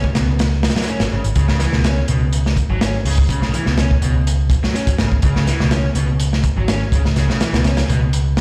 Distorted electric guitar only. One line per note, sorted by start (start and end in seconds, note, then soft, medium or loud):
0.15 0.27 B2 medium
0.76 0.86 F#3 medium
0.88 1.00 C#4 medium
1.12 1.20 C#3 medium
1.36 1.47 C#3 medium
1.49 1.59 C#3 medium
1.60 1.72 E3 medium
1.73 1.83 B2 medium
1.84 1.96 C#4 medium
2.08 2.21 B2 medium
2.70 2.80 F#3 medium
2.81 2.93 C#4 medium
3.05 3.14 C#3 medium
3.29 3.41 C#3 medium
3.42 3.53 C#3 medium
3.54 3.65 E3 medium
3.66 3.77 B2 medium
3.78 3.90 C#4 medium
4.02 4.14 B2 medium
4.63 4.74 F#3 medium
4.75 4.87 C#4 medium
4.99 5.08 C#3 medium
5.23 5.35 C#3 medium
5.36 5.46 C#3 medium
5.47 5.59 E3 medium
5.60 5.70 B2 medium
5.71 5.84 C#4 medium
5.96 6.08 B2 medium
6.57 6.67 F#3 medium
6.68 6.80 C#4 medium
6.92 7.01 C#3 medium
7.17 7.28 C#3 medium
7.29 7.40 C#3 medium
7.41 7.52 E3 medium
7.53 7.64 B2 medium
7.65 7.77 C#4 medium
7.89 8.01 B2 medium